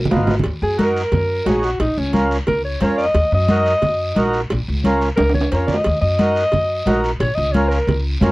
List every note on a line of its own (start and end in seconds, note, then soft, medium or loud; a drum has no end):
0.00 0.11 A#4 medium
0.05 low conga loud
0.10 0.39 G#1 medium
0.10 0.34 B3 medium
0.10 0.35 D#4 medium
0.10 0.35 F4 medium
0.10 cowbell medium
0.10 low timbale medium
0.10 short guiro medium
0.17 low conga medium
0.27 low conga medium
0.27 low timbale loud
0.27 short guiro medium
0.39 low conga medium
0.43 0.52 D#2 loud
0.43 cowbell loud
0.43 long guiro medium
0.62 1.02 F#2 loud
0.62 0.79 G#4 medium
0.78 1.02 D#4 medium
0.78 1.02 F#4 medium
0.78 1.02 A#4 medium
0.78 1.49 A#4 medium
0.78 cowbell medium
0.78 high conga medium
0.78 short guiro medium
0.97 short guiro medium
1.12 1.39 F#2 loud
1.12 cowbell medium
1.12 high conga soft
1.12 low conga medium
1.12 long guiro medium
1.46 1.73 A#1 medium
1.46 1.70 D#4 medium
1.46 1.70 F#4 medium
1.46 1.66 G#4 medium
1.46 1.70 C#5 medium
1.46 cowbell medium
1.46 high conga medium
1.46 low timbale medium
1.46 short guiro medium
1.63 1.80 F#4 medium
1.63 short guiro medium
1.80 1.87 A#1 loud
1.80 2.00 D#4 medium
1.80 cowbell loud
1.80 high conga soft
1.80 long guiro medium
1.97 2.38 C#2 loud
1.97 2.14 C#4 medium
2.13 2.37 C#4 medium
2.13 2.37 F4 medium
2.13 2.37 A#4 medium
2.13 cowbell medium
2.13 high conga medium
2.13 short guiro medium
2.31 short guiro medium
2.47 2.75 C#2 loud
2.47 2.64 A#4 medium
2.47 cowbell medium
2.47 high conga soft
2.47 low conga medium
2.47 long guiro medium
2.65 2.81 C#5 medium
2.81 3.09 F2 medium
2.81 3.05 C#4 medium
2.81 3.05 F4 medium
2.81 3.06 A#4 medium
2.81 2.97 C#5 medium
2.81 cowbell medium
2.81 high conga medium
2.81 short guiro medium
2.98 3.31 D#5 medium
2.98 short guiro medium
3.14 3.22 D#2 loud
3.14 cowbell loud
3.14 high conga soft
3.14 long guiro medium
3.32 3.73 F#2 loud
3.32 4.32 D#5 loud
3.48 3.73 D#4 medium
3.48 3.73 F#4 medium
3.48 3.73 A#4 medium
3.48 cowbell medium
3.48 high conga medium
3.48 short guiro medium
3.66 short guiro medium
3.82 4.10 F#2 loud
3.82 cowbell medium
3.82 high conga soft
3.82 low conga medium
3.82 long guiro medium
4.16 4.44 A#1 loud
4.16 4.40 D#4 medium
4.16 4.40 F#4 medium
4.16 4.41 A#4 medium
4.16 cowbell medium
4.16 high conga medium
4.16 short guiro medium
4.33 short guiro medium
4.50 4.58 A#1 loud
4.50 cowbell loud
4.50 high conga soft
4.50 long guiro medium
4.68 5.08 C#2 medium
4.84 5.08 C#4 medium
4.84 5.08 F4 medium
4.84 5.09 A#4 medium
4.84 cowbell medium
4.84 high conga medium
4.84 short guiro medium
5.01 short guiro medium
5.16 5.45 C#2 medium
5.16 5.34 A#4 medium
5.16 cowbell medium
5.16 high conga loud
5.16 high timbale medium
5.16 long guiro medium
5.29 high timbale medium
5.34 5.51 C#5 medium
5.34 low conga medium
5.41 high timbale medium
5.51 5.79 F2 medium
5.51 5.76 C#4 medium
5.51 5.76 F4 medium
5.51 5.76 A#4 medium
5.51 5.67 C#5 medium
5.51 cowbell medium
5.51 short guiro medium
5.67 6.01 D#5 medium
5.67 low conga medium
5.67 short guiro medium
5.74 low timbale medium
5.84 5.93 D#2 loud
5.84 cowbell loud
5.84 high conga soft
5.84 long guiro medium
6.01 6.42 F#2 loud
6.01 7.00 D#5 loud
6.19 6.43 D#4 medium
6.19 6.43 F#4 medium
6.19 6.44 A#4 medium
6.19 cowbell medium
6.19 high conga medium
6.19 short guiro medium
6.36 short guiro medium
6.52 6.80 F#2 medium
6.52 cowbell medium
6.52 high conga soft
6.52 low conga medium
6.52 long guiro medium
6.86 7.13 A#1 medium
6.86 7.10 D#4 medium
6.86 7.10 F#4 medium
6.86 7.11 A#4 medium
6.86 cowbell medium
6.86 high conga medium
6.86 low timbale medium
6.86 short guiro medium
7.04 short guiro medium
7.20 7.27 A#1 loud
7.20 7.36 C#5 medium
7.20 cowbell loud
7.20 high conga soft
7.20 long guiro medium
7.35 7.78 C#2 loud
7.35 7.54 D#5 medium
7.52 7.78 C#4 medium
7.52 7.78 F4 medium
7.52 7.79 A#4 medium
7.52 7.70 C#5 medium
7.52 cowbell medium
7.52 high conga medium
7.52 short guiro medium
7.69 8.03 A#4 medium
7.69 short guiro medium
7.87 8.15 C#2 loud
7.87 cowbell medium
7.87 high conga soft
7.87 low conga medium
7.87 long guiro medium
8.21 8.32 F2 medium
8.21 8.32 C#4 medium
8.21 8.32 F4 medium
8.21 8.32 A#4 medium
8.21 cowbell medium
8.21 high conga medium
8.21 low conga medium
8.21 low timbale medium
8.21 short guiro medium